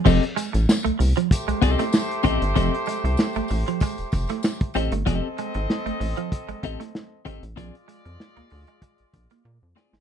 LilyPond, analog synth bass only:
\new Staff \with { instrumentName = "Analog synth bass" } { \clef bass \time 4/4 \key f \mixolydian \tempo 4 = 96 f,,16 r8 a,,16 r16 c,16 c,16 r8 c,16 c,16 r8. a,,16 g,,16 | f,,16 r8 c,16 r16 a,,16 a,,16 r8 f,,16 f,,16 r8. a,,16 g,,16 | f,,16 r8 aes,,16 r16 a,,16 a,,16 r8 a,,16 a,,16 r8. aes,,16 a,,16 | bes,,16 r8 f,16 r16 d,16 d,16 r8 bes,,16 bes,,16 r16 bes,16 f,16 r16 aes,,16 | }